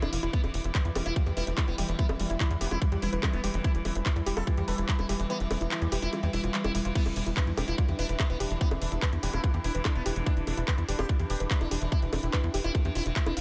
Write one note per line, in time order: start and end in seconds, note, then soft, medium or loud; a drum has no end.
0.00 0.08 E1 medium
0.00 6.96 E3 medium
0.00 0.09 D4 loud
0.00 0.35 E4 medium
0.00 13.41 E4 medium
0.00 0.11 E4 loud
0.00 13.41 B4 medium
0.00 1.00 D6 medium
0.00 closed hi-hat soft
0.00 high bongo medium
0.13 0.19 E1 loud
0.13 0.19 E3 medium
0.13 0.19 F5 medium
0.13 open hi-hat loud
0.23 0.29 E1 loud
0.23 0.30 E3 medium
0.23 0.29 E4 loud
0.23 closed hi-hat medium
0.33 6.98 G3 medium
0.33 0.40 B3 loud
0.33 0.39 E4 medium
0.33 kick loud
0.33 closed hi-hat medium
0.44 0.50 E1 medium
0.44 0.50 E3 medium
0.44 closed hi-hat soft
0.44 high bongo soft
0.54 0.60 E1 loud
0.54 0.61 E3 medium
0.54 open hi-hat loud
0.64 0.71 E1 loud
0.64 0.70 E4 medium
0.64 closed hi-hat medium
0.75 0.82 E3 medium
0.75 0.81 E4 medium
0.75 kick loud
0.75 clap loud
0.75 closed hi-hat medium
0.85 0.91 E2 medium
0.85 0.91 E4 medium
0.85 closed hi-hat soft
0.95 1.02 E1 loud
0.95 1.02 E3 medium
0.95 0.99 G4 loud
0.95 4.31 B5 medium
0.95 open hi-hat loud
0.95 high bongo medium
1.06 1.12 E1 medium
1.06 1.13 E4 loud
1.06 1.09 F4 medium
1.06 closed hi-hat medium
1.16 1.23 E3 medium
1.16 1.22 F4 medium
1.16 kick loud
1.16 closed hi-hat medium
1.26 1.33 E2 medium
1.26 1.33 E3 medium
1.26 1.32 G4 medium
1.26 closed hi-hat soft
1.37 1.43 E1 loud
1.37 1.44 E4 loud
1.37 1.46 B4 medium
1.37 open hi-hat loud
1.47 1.53 E1 loud
1.47 1.54 E3 medium
1.47 1.56 B4 medium
1.47 closed hi-hat medium
1.57 1.64 E3 medium
1.57 1.66 E4 medium
1.57 kick loud
1.57 clap loud
1.57 closed hi-hat medium
1.57 high bongo soft
1.68 1.74 E1 medium
1.68 1.75 B3 loud
1.68 1.74 E4 medium
1.68 closed hi-hat soft
1.78 1.84 E1 loud
1.78 1.85 E3 medium
1.78 1.82 G4 loud
1.78 open hi-hat loud
1.88 1.95 E1 medium
1.88 1.95 E3 medium
1.88 closed hi-hat medium
1.99 2.06 B3 loud
1.99 2.05 E4 medium
1.99 kick loud
1.99 closed hi-hat medium
2.09 2.15 E1 medium
2.09 2.16 E3 medium
2.09 closed hi-hat soft
2.09 high bongo medium
2.19 2.26 E1 loud
2.19 2.26 E3 medium
2.19 open hi-hat loud
2.30 2.36 E1 medium
2.30 2.36 E4 medium
2.30 closed hi-hat medium
2.40 2.47 E3 medium
2.40 2.46 E4 medium
2.40 kick loud
2.40 clap loud
2.40 closed hi-hat medium
2.51 2.57 E2 medium
2.51 2.56 E4 medium
2.51 closed hi-hat soft
2.61 2.67 E1 loud
2.61 2.68 E3 medium
2.61 2.69 B3 medium
2.61 2.64 G4 loud
2.61 open hi-hat loud
2.71 2.77 E1 medium
2.71 2.78 E4 loud
2.71 2.75 F4 medium
2.71 closed hi-hat medium
2.71 high bongo soft
2.82 2.88 E3 medium
2.82 2.88 F4 medium
2.82 kick loud
2.82 closed hi-hat medium
2.92 2.98 E2 medium
2.92 2.99 E3 medium
2.92 2.98 G4 medium
2.92 closed hi-hat soft
3.02 3.08 E1 loud
3.02 3.09 E4 loud
3.02 3.11 B4 medium
3.02 open hi-hat loud
3.13 3.19 E1 medium
3.13 3.19 E3 medium
3.13 3.21 B4 medium
3.13 closed hi-hat medium
3.23 3.30 E3 medium
3.23 3.32 E4 medium
3.23 kick loud
3.23 clap loud
3.23 closed hi-hat medium
3.23 high bongo medium
3.33 3.39 E1 medium
3.33 3.40 B3 loud
3.33 3.39 E4 medium
3.33 closed hi-hat soft
3.44 3.50 E1 medium
3.44 3.50 E3 medium
3.44 3.47 G4 loud
3.44 open hi-hat loud
3.54 3.60 E1 loud
3.54 3.61 E3 medium
3.54 closed hi-hat medium
3.64 3.70 E4 medium
3.64 3.71 E4 loud
3.64 kick loud
3.64 closed hi-hat medium
3.75 3.81 E1 medium
3.75 3.82 E3 medium
3.75 closed hi-hat soft
3.85 3.91 E1 medium
3.85 3.92 E3 medium
3.85 open hi-hat loud
3.85 high bongo soft
3.95 4.02 E1 medium
3.95 4.01 E4 medium
3.95 closed hi-hat medium
4.06 4.13 E3 medium
4.06 4.12 E4 medium
4.06 kick loud
4.06 clap loud
4.06 closed hi-hat medium
4.16 4.22 E2 medium
4.16 4.22 E4 medium
4.16 closed hi-hat soft
4.26 4.33 E1 loud
4.26 4.33 E3 medium
4.26 4.30 G4 loud
4.26 7.62 D6 medium
4.26 open hi-hat loud
4.37 4.43 E1 medium
4.37 4.40 F4 medium
4.37 4.44 A4 loud
4.37 closed hi-hat medium
4.37 high bongo medium
4.47 4.54 E3 medium
4.47 4.53 F4 medium
4.47 kick loud
4.47 closed hi-hat medium
4.57 4.64 E2 medium
4.57 4.64 E3 medium
4.57 4.63 G4 medium
4.57 closed hi-hat soft
4.68 4.74 E1 loud
4.68 4.75 A4 loud
4.68 4.77 B4 medium
4.68 open hi-hat loud
4.78 4.84 E1 medium
4.78 4.85 E3 medium
4.78 4.87 B4 medium
4.78 closed hi-hat medium
4.89 4.95 E3 medium
4.89 4.97 E4 medium
4.89 kick loud
4.89 clap loud
4.89 closed hi-hat medium
4.99 5.05 E1 medium
4.99 5.06 E4 medium
4.99 5.05 E4 medium
4.99 closed hi-hat soft
4.99 high bongo soft
5.09 5.15 E1 loud
5.09 5.16 E3 medium
5.09 5.13 G4 loud
5.09 open hi-hat loud
5.20 5.26 E1 medium
5.20 5.26 E3 medium
5.20 closed hi-hat medium
5.30 5.37 B3 loud
5.30 5.36 E4 medium
5.30 closed hi-hat medium
5.40 5.46 E1 medium
5.40 5.47 E3 medium
5.40 closed hi-hat soft
5.51 5.57 E1 loud
5.51 5.57 E3 medium
5.51 open hi-hat loud
5.51 high bongo medium
5.61 5.67 E1 loud
5.61 5.67 E4 medium
5.61 closed hi-hat medium
5.71 5.78 E3 medium
5.71 5.77 E4 medium
5.71 clap loud
5.71 closed hi-hat medium
5.82 5.88 E2 medium
5.82 5.88 E4 medium
5.82 closed hi-hat soft
5.92 5.98 E1 loud
5.92 5.99 E3 medium
5.92 5.96 G4 loud
5.92 open hi-hat loud
6.02 6.08 E1 medium
6.02 6.09 E4 loud
6.02 6.06 F4 medium
6.02 closed hi-hat medium
6.13 6.19 E3 medium
6.13 6.19 F4 medium
6.13 closed hi-hat medium
6.13 high bongo soft
6.23 6.29 E2 medium
6.23 6.30 E3 medium
6.23 6.29 G4 medium
6.23 closed hi-hat soft
6.33 6.39 E1 loud
6.33 6.40 E4 loud
6.33 6.42 E5 medium
6.33 open hi-hat loud
6.44 6.50 E1 medium
6.44 6.51 E3 medium
6.44 6.53 F4 medium
6.44 closed hi-hat medium
6.54 6.61 E3 medium
6.54 6.60 E4 loud
6.54 clap loud
6.54 closed hi-hat medium
6.64 6.71 E1 medium
6.64 6.71 E4 medium
6.64 6.70 G4 medium
6.64 closed hi-hat soft
6.64 high bongo medium
6.75 6.81 E1 loud
6.75 6.82 E3 medium
6.75 6.78 E4 medium
6.75 open hi-hat loud
6.85 6.91 E1 medium
6.85 6.92 E3 medium
6.85 6.89 F4 medium
6.85 closed hi-hat medium
6.95 7.02 B3 loud
6.95 13.41 D4 medium
6.95 7.01 E4 medium
6.95 kick loud
6.95 closed hi-hat medium
6.95 crash medium
7.06 7.12 E1 medium
7.06 7.13 E3 medium
7.06 closed hi-hat soft
7.06 high bongo soft
7.16 7.22 E1 loud
7.16 7.23 E3 medium
7.16 open hi-hat loud
7.26 7.33 E1 medium
7.26 7.32 E4 medium
7.26 closed hi-hat medium
7.37 7.44 E3 medium
7.37 7.40 B4 loud
7.37 kick loud
7.37 clap loud
7.37 closed hi-hat medium
7.47 7.53 E2 medium
7.47 7.53 E4 medium
7.47 closed hi-hat soft
7.57 7.64 E1 loud
7.57 7.64 E3 medium
7.57 7.61 G4 loud
7.57 10.93 B5 medium
7.57 open hi-hat loud
7.57 high bongo medium
7.68 7.74 E1 medium
7.68 7.75 E4 loud
7.68 7.71 F4 medium
7.68 closed hi-hat medium
7.78 7.85 E3 medium
7.78 7.84 F4 medium
7.78 kick loud
7.78 closed hi-hat medium
7.88 7.95 E2 medium
7.88 7.95 E3 medium
7.88 7.94 G4 medium
7.88 closed hi-hat soft
7.99 8.05 E1 loud
7.99 8.06 E4 loud
7.99 8.08 B4 medium
7.99 open hi-hat loud
8.09 8.15 E1 medium
8.09 8.16 E3 medium
8.09 8.18 B4 medium
8.09 closed hi-hat medium
8.20 8.26 E3 medium
8.20 8.28 E4 medium
8.20 kick loud
8.20 clap loud
8.20 closed hi-hat medium
8.20 high bongo soft
8.30 8.36 E1 medium
8.30 8.37 B3 loud
8.30 8.36 E4 medium
8.30 closed hi-hat soft
8.40 8.46 E1 loud
8.40 8.47 E3 medium
8.40 8.44 G4 loud
8.40 open hi-hat loud
8.51 8.57 E1 loud
8.51 8.57 E3 medium
8.51 closed hi-hat medium
8.61 8.68 B3 loud
8.61 8.67 E4 medium
8.61 kick loud
8.61 closed hi-hat medium
8.71 8.77 E1 medium
8.71 8.78 E3 medium
8.71 closed hi-hat soft
8.71 high bongo medium
8.82 8.88 E1 loud
8.82 8.88 E3 medium
8.82 open hi-hat loud
8.92 8.98 E1 loud
8.92 8.98 E4 medium
8.92 closed hi-hat medium
9.02 9.09 E3 medium
9.02 9.06 B4 loud
9.02 kick loud
9.02 clap loud
9.02 closed hi-hat medium
9.13 9.19 E2 medium
9.13 9.19 E4 medium
9.13 closed hi-hat soft
9.23 9.29 E1 loud
9.23 9.30 E3 medium
9.23 9.31 B3 medium
9.23 9.27 G4 loud
9.23 open hi-hat loud
9.33 9.39 E1 medium
9.33 9.40 A3 loud
9.33 9.40 E4 loud
9.33 9.37 F4 medium
9.33 closed hi-hat medium
9.33 high bongo soft
9.44 9.51 E3 medium
9.44 9.50 A3 medium
9.44 9.50 F4 medium
9.44 kick loud
9.44 closed hi-hat medium
9.54 9.60 E2 medium
9.54 9.61 E3 medium
9.54 9.60 G4 medium
9.54 closed hi-hat soft
9.64 9.71 E1 loud
9.64 9.71 E4 medium
9.64 9.73 B4 medium
9.64 open hi-hat loud
9.75 9.81 E1 medium
9.75 9.82 E3 medium
9.75 9.84 B4 medium
9.75 closed hi-hat medium
9.85 9.92 E3 medium
9.85 9.94 E4 medium
9.85 kick loud
9.85 clap loud
9.85 closed hi-hat medium
9.85 high bongo medium
9.95 10.02 E1 medium
9.95 10.02 B3 loud
9.95 10.01 E4 medium
9.95 closed hi-hat soft
10.06 10.12 E1 medium
10.06 10.13 E3 medium
10.06 10.09 G4 loud
10.06 open hi-hat loud
10.16 10.22 E1 loud
10.16 10.23 E3 medium
10.16 closed hi-hat medium
10.26 10.33 D4 loud
10.26 10.32 E4 medium
10.26 kick loud
10.26 closed hi-hat medium
10.37 10.43 E1 medium
10.37 10.44 E3 medium
10.37 closed hi-hat soft
10.47 10.53 E1 medium
10.47 10.54 E3 medium
10.47 open hi-hat loud
10.47 high bongo soft
10.57 10.64 E1 loud
10.57 10.63 E4 medium
10.57 closed hi-hat medium
10.68 10.75 E3 medium
10.68 10.71 B4 loud
10.68 kick loud
10.68 clap loud
10.68 closed hi-hat medium
10.78 10.84 E2 medium
10.78 10.84 E4 medium
10.78 closed hi-hat soft
10.88 10.95 E1 loud
10.88 10.95 E3 medium
10.88 10.92 G4 loud
10.88 13.41 G5 medium
10.88 open hi-hat loud
10.99 11.05 E1 medium
10.99 11.02 F4 medium
10.99 11.06 G4 loud
10.99 closed hi-hat medium
10.99 high bongo medium
11.09 11.16 E3 medium
11.09 11.15 F4 medium
11.09 kick loud
11.09 closed hi-hat medium
11.20 11.26 E2 medium
11.20 11.26 E3 medium
11.20 11.25 G4 medium
11.20 closed hi-hat soft
11.30 11.36 E1 loud
11.30 11.37 G4 loud
11.30 11.39 B4 medium
11.30 open hi-hat loud
11.40 11.46 E1 medium
11.40 11.47 E3 medium
11.40 11.49 B4 medium
11.40 closed hi-hat medium
11.51 11.57 E3 medium
11.51 11.59 E4 medium
11.51 kick loud
11.51 clap loud
11.51 closed hi-hat medium
11.61 11.67 E1 medium
11.61 11.68 D4 loud
11.61 11.67 E4 medium
11.61 closed hi-hat soft
11.61 high bongo soft
11.71 11.77 E1 medium
11.71 11.78 E3 medium
11.71 11.75 G4 loud
11.71 open hi-hat loud
11.82 11.88 E1 loud
11.82 11.88 E3 medium
11.82 closed hi-hat medium
11.92 11.98 E4 medium
11.92 11.99 E4 loud
11.92 kick loud
11.92 closed hi-hat medium
12.02 12.08 E1 medium
12.02 12.09 E3 medium
12.02 closed hi-hat soft
12.13 12.19 E1 loud
12.13 12.19 E3 medium
12.13 open hi-hat loud
12.13 high bongo medium
12.23 12.29 E1 medium
12.23 12.29 E4 medium
12.23 closed hi-hat soft
12.33 12.40 E3 medium
12.33 12.37 B4 loud
12.33 kick loud
12.33 clap loud
12.33 closed hi-hat medium
12.44 12.50 E2 medium
12.44 12.50 E4 medium
12.44 closed hi-hat soft
12.54 12.60 E1 loud
12.54 12.61 E3 medium
12.54 12.58 G4 loud
12.54 open hi-hat loud
12.64 12.71 E1 medium
12.64 12.71 E4 loud
12.64 12.68 F4 medium
12.64 closed hi-hat medium
12.75 12.82 E3 medium
12.75 12.81 F4 medium
12.75 kick loud
12.75 closed hi-hat medium
12.75 high bongo soft
12.85 12.91 E2 medium
12.85 12.92 E3 medium
12.85 12.91 G4 medium
12.85 closed hi-hat soft
12.95 13.02 E1 loud
12.95 13.02 E4 loud
12.95 12.99 F4 medium
12.95 open hi-hat loud
13.06 13.12 E1 loud
13.06 13.13 E3 medium
13.06 closed hi-hat medium
13.16 13.23 E3 medium
13.16 13.25 E5 loud
13.16 kick loud
13.16 clap loud
13.16 closed hi-hat medium
13.26 13.33 E1 medium
13.26 13.33 D4 loud
13.26 13.35 E4 loud
13.26 closed hi-hat soft
13.26 high bongo medium
13.37 13.41 E1 medium
13.37 13.41 E3 medium
13.37 13.41 F5 medium
13.37 open hi-hat loud